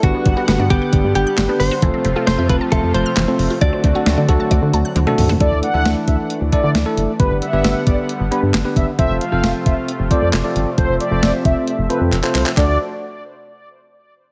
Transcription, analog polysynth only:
5.40 D5
5.63 F#5
6.08 E5
6.52 D5
7.19 B4
7.42 E5
7.87 D5
8.31 B4
8.76 E5
8.99 E5
9.21 F5
9.66 E5
10.11 D5
10.78 C5
11.00 D5
11.45 E5
11.90 B4
12.35 C5
12.57 D5

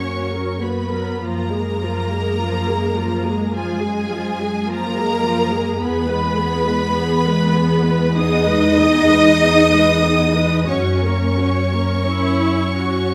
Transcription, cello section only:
Already playing: C#4
0.63 B3
1.24 A#3
3.56 G#3
4.70 A#3
5.82 B3
8.17 D#4
10.69 C#4

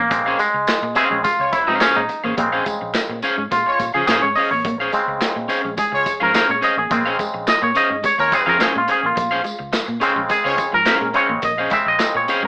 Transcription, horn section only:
1.40 G#3 C#4 F4 C#5
3.67 G#3 C#4 F4 C#5
5.94 G#3 C#4 F4 C#5
8.18 G#3 C#4 F4 C#5
10.46 G#3 C#4 F4 C#5

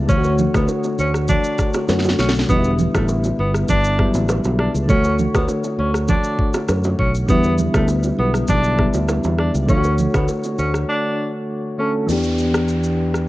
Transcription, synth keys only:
0.06 D3 A3 C#5
0.11 F4
0.18 F#4
1.88 D3 A3 C#4 F#4
2.46 D3 G3 B3
2.51 D#4
2.58 E4
3.98 D3 F#3 B3 E4
4.05 G3
4.86 D3 A3 C#5
4.91 F#4
7.26 D3 G3 B3
7.31 E4
8.78 D3 G3 B3 E4
9.66 D3 A3 C#5
9.71 F4
9.78 F#4
11.78 D3 A3 C#4 A4
12.07 E3 B3 D4
12.11 G4

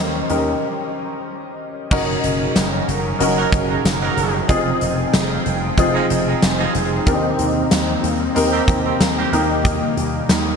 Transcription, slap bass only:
Already playing: D#2
0.30 D#2
1.91 F#1
2.24 F#1
2.56 F#1
2.88 F#1
3.20 F#1
3.52 F#1
3.85 F#1
4.17 F#1
4.49 F1
4.82 F1
5.14 F1
5.46 F1
5.78 F1
6.10 F1
6.42 F1
6.75 F1
7.07 D#2
7.39 D#2
7.71 D#2
8.03 D#2
8.36 D#2
8.68 D#2
9.00 D#2
9.32 D#2
9.97 D#2
10.29 D#2

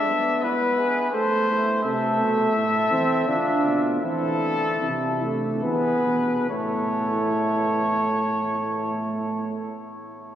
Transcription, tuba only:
1.84 C3
2.19 B2
2.55 A2
2.92 E3
3.28 D3
3.65 B2
4.03 E3
4.81 C3
5.64 E3
6.07 B2
6.50 A2

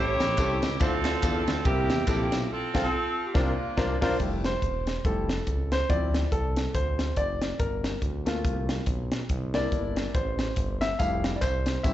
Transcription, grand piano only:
Already playing: A2 C#4 E4 G4 A4
0.37 C#4 E4 G4 A4
0.80 D3 D4 E4 F4 C5
1.05 D4 E4 F4 C5
1.23 D4 E4 F4 A4
1.65 C3 C4 E4 G4 A#4
2.07 C4 E4 G4 A4
2.74 C4 F4 A4
3.34 C3 D4 F4 A#4 C5
3.77 D4 F4 A#4 C5
4.01 D4 F4 A#4 C5
4.20 G3 A3 E4
4.45 C5
5.05 G3 A3 E4 A4
5.72 C5
5.89 F3 C4 E4 D5
6.32 A4
6.75 C5
7.17 D5
7.59 A#4
8.26 A3 A#3 F4
9.54 A#3 D4 E4 D5
10.15 C5
10.81 E5
10.99 G3 A3 E4 F5
11.36 D5
11.41 C5
11.83 G3 C#4 E4 E5

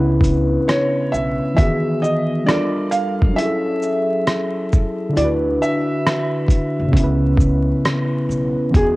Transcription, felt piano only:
0.68 C#5
1.12 E5
1.57 E5
2.02 D#5
2.46 D5
2.91 F5
3.36 E5
5.17 D5
5.62 E5
8.76 G#4

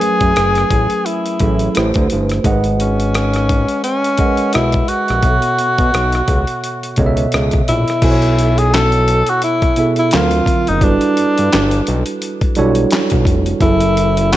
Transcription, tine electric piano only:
Already playing: F#3 A3 C#4 G#4 A#4 B4 E5
1.41 F#3 C#4 G#4 A4 E5
1.75 A3 E4 G4 B4 C5
2.44 G#3 G#4 A#4 D#5 F#5
2.52 B4
4.18 G#3 G#4 A#4 D#5 F#5
4.26 B4
5.24 B2 B3 A4 C#5 E5
6.97 B2 B3 A4 C#5 D#5
7.06 E5
8.02 B2 B3 E4 A4 C5 G#5
8.11 C#5
9.77 B2 B3 E4 G#4 A4 E5
10.12 D3 F#3 C4 F4 A#4
10.81 G3 D4 E4 F#4 A4 B4
12.57 G3 D4 E4 F#4 A4 C#5
13.61 F#3 C#4 E4 G#4 A4

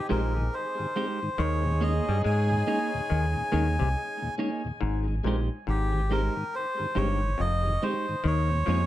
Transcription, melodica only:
0.11 A#4
0.54 C5
1.39 C#5
1.83 D#5
2.25 G#5
5.69 G4
6.12 A#4
6.55 C5
6.97 C#5
7.40 D#5
7.83 C5
8.27 C#5

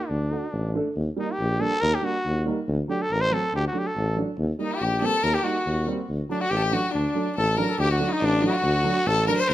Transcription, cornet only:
0.08 D4
1.19 D#4
1.32 G4
1.61 A4
1.81 A#4
1.95 G4
2.05 F#4
2.90 G4
3.02 A4
3.13 A#4
3.21 C5
3.33 A4
3.56 G4
3.67 F#4
3.78 G4
3.87 A4
4.64 D#4
4.74 G4
5.06 A4
5.23 A#4
5.34 G4
5.44 F#4
6.31 D4
6.41 F#4
6.50 G4
6.74 F#4
6.93 D4
7.38 A4
7.58 A#4
7.70 A4
7.80 G4
7.91 F#4
8.13 D#4
8.25 D4
8.47 F#4
9.07 A4
9.28 A#4
9.40 C5
9.49 A#4

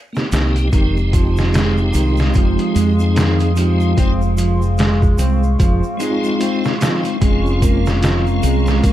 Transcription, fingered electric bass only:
0.32 C2
0.73 F1
1.95 C2
2.35 F1
2.76 F2
3.98 F1
5.19 C2
5.60 F1
7.22 F1
8.43 C2
8.84 F1

